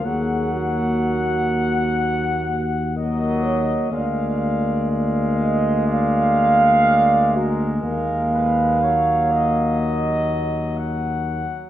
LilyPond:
<<
  \new Staff \with { instrumentName = "Trumpet section" } { \time 4/4 \key ees \minor \tempo 4 = 62 ges''2. ees''4 | f''4 f''4 d''4 d''8 bes'8 | bes'8 ces''8 des''8 ees''4. ges''4 | }
  \new Staff \with { instrumentName = "French horn section" } { \time 4/4 \key ees \minor aes'8 ges'2~ ges'8 bes'8 des''8 | d''4. ees''8 f''4. ges'8 | f''2 ees''4 r4 | }
  \new Staff \with { instrumentName = "Euphonium" } { \time 4/4 \key ees \minor bes2~ bes8 r8 bes4 | bes1 | bes2.~ bes8 r8 | }
  \new Staff \with { instrumentName = "Trombone" } { \clef bass \time 4/4 \key ees \minor ges2~ ges8 r8 ges4 | aes1~ | aes4 ges2. | }
  \new Staff \with { instrumentName = "Tuba" } { \clef bass \time 4/4 \key ees \minor ees,1 | d,1 | ees,2.~ ees,8 r8 | }
>>